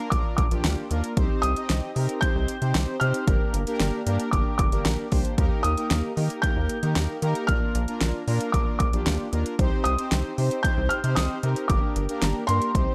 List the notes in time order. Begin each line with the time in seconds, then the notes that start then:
Already playing: F6
0.10 A#1 A#3 D4 F4 A#4 D6, kick, closed hi-hat
0.37 A#1 D6, kick, closed hi-hat
0.51 A#1 A#3 D4 F4 G4, closed hi-hat
0.64 D2, snare, closed hi-hat
0.91 D#2 A#3 D4 F4 A#4, closed hi-hat
1.04 closed hi-hat
1.17 C2 C4 D#4 G4 C5, kick, closed hi-hat
1.42 C2 D#6, closed hi-hat
1.56 C4 D#4 G4 D#5, closed hi-hat
1.70 C2, snare, closed hi-hat
1.96 C3 C4 D#4 G4 A#4, open hi-hat
2.09 closed hi-hat
2.21 C4 D#4 G4 C5 G6, kick, closed hi-hat
2.35 C2
2.48 closed hi-hat
2.62 C3 C4 D#4 G4 C5, closed hi-hat
2.75 C2, snare, closed hi-hat
3.00 C3 C4 D#4 G4 C5 F6, closed hi-hat
3.14 closed hi-hat
3.27 G1 A#3 D4 G4 A#4, kick, closed hi-hat
3.54 G1, closed hi-hat
3.67 A#3 D4 G4 A#4, closed hi-hat
3.80 G1, snare, closed hi-hat
4.06 G2 A#3 D4 G4 A#4, closed hi-hat
4.20 closed hi-hat
4.31 G1 A#3 D4 G4 A#4 D6, kick, closed hi-hat
4.58 G1 D6, kick, closed hi-hat
4.72 G1 A#3 D4 G4 A#4, closed hi-hat
4.85 A#1, snare, closed hi-hat
5.12 C2 A#3 D4 G4 C5, kick, open hi-hat
5.25 closed hi-hat
5.38 D#2 A#3 D#4 G4 A#4, kick, closed hi-hat
5.63 D#2 D#6, closed hi-hat
5.78 A#3 D#4 G4 A#4, closed hi-hat
5.91 D#2, snare, closed hi-hat
6.17 D#3 A#3 D#4 G4 A#4, open hi-hat
6.30 closed hi-hat
6.42 A#3 D#4 G4 A#4 G6, kick, closed hi-hat
6.57 D#2
6.69 closed hi-hat
6.83 D#3 A#3 D#4 G4 A#4, closed hi-hat
6.96 D#2, snare, closed hi-hat
7.22 D#3 A#3 D#4 G4 A#4, closed hi-hat
7.35 closed hi-hat
7.47 A#1 A#3 D4 F4 A#4 F6, kick, closed hi-hat
7.75 A#1, closed hi-hat
7.88 A#3 D4 F4 A#4, closed hi-hat
8.01 A#1, snare, closed hi-hat
8.28 A#2 A#3 D4 F4 A#4, open hi-hat
8.41 closed hi-hat
8.52 A#1 A#3 D4 F4 A#4 D6, kick, closed hi-hat
8.79 A#1 D6, kick, closed hi-hat
8.93 A#1 A#3 D4 F4 G4, closed hi-hat
9.06 D2, snare, closed hi-hat
9.33 D#2 A#3 D4 F4 A#4, closed hi-hat
9.46 closed hi-hat
9.59 C2 C4 D#4 G4 C5, kick, closed hi-hat
9.84 C2 D#6, closed hi-hat
9.98 C4 D#4 G4 C5, closed hi-hat
10.12 C2, snare, closed hi-hat
10.38 C3 C4 D#4 G4 C5, open hi-hat
10.51 closed hi-hat
10.63 C4 D#4 G4 C5 G6, kick, closed hi-hat
10.78 C2
10.89 F6, closed hi-hat
11.04 C3 C4 D#4 G4 C5, closed hi-hat
11.15 C2 D#6, snare, closed hi-hat
11.43 C3 C4 D#4 G4 A#4, closed hi-hat
11.56 closed hi-hat
11.68 G1 A#3 D4 G4 A#4 D6, kick, closed hi-hat
11.96 G1, closed hi-hat
12.09 A#3 D4 G4 A#4, closed hi-hat
12.22 G1, snare, closed hi-hat
12.47 G2 A#3 D4 G4 A#4 C6, closed hi-hat
12.62 closed hi-hat
12.75 C2 C4 D#4 G4 C5, kick, closed hi-hat